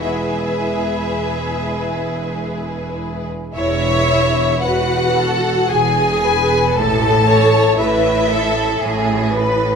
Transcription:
<<
  \new Staff \with { instrumentName = "Violin section" } { \time 3/4 \key e \major \tempo 4 = 56 e''2~ e''8 r8 | e''4 fis''4 gis''4 | a''4 e''4. r8 | }
  \new Staff \with { instrumentName = "Violin section" } { \time 3/4 \key e \major <gis' b'>2. | cis''4 b'8 a'8 gis'8 b'8 | a'8 cis''8 b'8 a'8 gis'8 b'8 | }
  \new Staff \with { instrumentName = "Viola section" } { \time 3/4 \key e \major <gis e'>2. | e'4 fis'4 gis'4 | a'4 e'4. r8 | }
  \new Staff \with { instrumentName = "Cello section" } { \clef bass \time 3/4 \key e \major e,2. | e,4 e,4 e,4 | a,4 a,4 a,4 | }
  \new Staff \with { instrumentName = "Double bass section" } { \clef bass \time 3/4 \key e \major e,,2. | e,,4 e,,4 e,,4 | a,,4 a,,4 a,,4 | }
>>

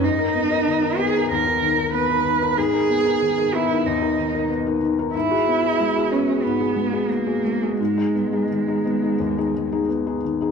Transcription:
<<
  \new Staff \with { instrumentName = "Cello" } { \time 4/4 \key gis \minor \tempo 4 = 93 dis'4. gis'8 ais'4 b'4 | gis'4. e'8 dis'4 r4 | e'4. cis'8 b4 ais4 | gis2. r4 | }
  \new Staff \with { instrumentName = "Felt piano" } { \time 4/4 \key gis \minor gis,16 <dis' ais'>16 b16 <dis' ais'>16 dis16 <dis' ais'>16 b16 <dis' ais'>16 dis,16 <dis' ais'>16 dis16 <dis' ais'>16 b16 <dis' ais'>16 dis16 <dis' ais'>16 | gis,16 <dis' ais'>16 b16 <dis' ais'>16 dis16 <dis' ais'>16 b16 <dis' ais'>16 dis,16 <dis' ais'>16 dis16 <dis' ais'>16 b16 <dis' ais'>16 dis16 <dis' ais'>16 | gis,16 <fis' gis'>16 b16 <fis' gis'>16 gis16 <fis' gis'>16 b16 <fis' gis'>16 gis,16 <fis' gis'>16 gis16 <fis' gis'>16 b16 <fis' gis'>16 gis16 <fis' gis'>16 | gis,16 <dis' gis'>16 b16 <dis' gis'>16 dis16 <dis' gis'>16 b16 <dis' gis'>16 dis,16 <dis' gis'>16 dis16 <dis' gis'>16 b16 <dis' gis'>16 dis16 <dis' gis'>16 | }
>>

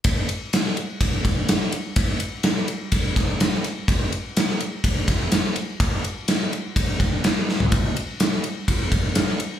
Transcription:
\new DrumStaff \with { instrumentName = "Drums" } \drummode { \time 4/4 \tempo 4 = 125 <bd cymr>8 cymr8 <cymr sn>8 cymr8 <bd cymr>8 <bd cymr>8 <cymr sn>8 cymr8 | <bd cymr>8 cymr8 <cymr sn>8 cymr8 <bd cymr>8 <bd cymr sn>8 <cymr sn>8 <cymr sn>8 | <bd cymr>8 cymr8 <cymr sn>8 cymr8 <bd cymr>8 <bd cymr sn>8 <cymr sn>8 cymr8 | <bd cymr>8 cymr8 <cymr sn>8 cymr8 <bd cymr>8 <bd cymr sn>8 <cymr sn>8 sn16 tomfh16 |
<bd cymr>8 cymr8 <cymr sn>8 cymr8 <bd cymr>8 <bd cymr>8 <cymr sn>8 cymr8 | }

